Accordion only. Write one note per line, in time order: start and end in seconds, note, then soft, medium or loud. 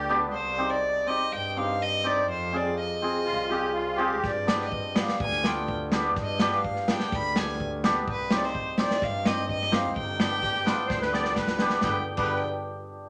0.00 0.18 G4 loud
3.24 3.51 F4 medium
3.50 3.73 G4 medium
3.73 3.99 F4 medium
3.96 4.31 G4 loud
10.43 10.67 G4 medium
10.65 10.76 B4 medium
10.87 11.01 C5 medium
11.01 11.13 B4 loud
11.13 11.37 D5 loud
11.38 11.81 B4 medium
11.83 11.96 B4 medium
12.18 12.40 B4 medium